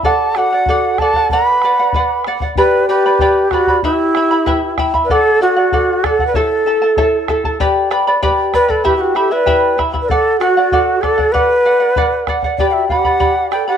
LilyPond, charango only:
\new Staff \with { instrumentName = "Charango" } { \time 2/4 \key g \lydian \tempo 4 = 96 <a' d'' fis''>8 <a' d'' fis''>16 <d'' fis''>16 <a' d'' fis''>8 <a' d'' fis''>16 <d'' fis''>16 | <b' d'' fis''>8 <b' d'' fis''>16 <d'' fis''>16 <b' d'' fis''>8 <b' d'' fis''>16 <d'' fis''>16 | <g' b' d'' g'' b''>8 <b' d'' g'' b''>16 <b' d'' b''>16 <g' b' d'' g'' b''>8 <b' d'' g'' b''>16 <b' d'' b''>16 | <e' b' e'' g'' b''>8 <e' e'' g'' b''>16 <e' e'' b''>16 <e' b' e'' g'' b''>8 <e' e'' g'' b''>16 <e' e'' b''>16 |
<a' d'' fis''>8 <a' d'' fis''>16 <d'' fis''>16 <a' d'' fis''>8 <a' d'' fis''>16 <d'' fis''>16 | <e' a' cis'' e'' a''>8 <e' a' e'' a''>16 <e' a' a''>16 <e' a' cis'' e'' a''>8 <e' a' e'' a''>16 <e' a' a''>16 | <g' b' d'' g'' b''>8 <b' d'' g'' b''>16 <b' d'' b''>16 <g' b' d'' g'' b''>8 <b' d'' g'' b''>16 <b' d'' b''>16 | <e' g' e'' g'' b''>8 <e' e'' g'' b''>16 <e' e'' b''>16 <e' g' e'' g'' b''>8 <e' e'' g'' b''>16 <e' e'' b''>16 |
<a' d'' fis''>8 <a' d'' fis''>16 <d'' fis''>16 <a' d'' fis''>8 <a' d'' fis''>16 <d'' fis''>16 | <b' d'' fis''>8 <b' d'' fis''>16 <d'' fis''>16 <b' d'' fis''>8 <b' d'' fis''>16 <d'' fis''>16 | <g' b' d'' g'' b''>8 <b' d'' g'' b''>16 <b' d'' b''>16 <g' b' d'' b''>8 <b' d'' g'' b''>16 <b' d'' b''>16 | }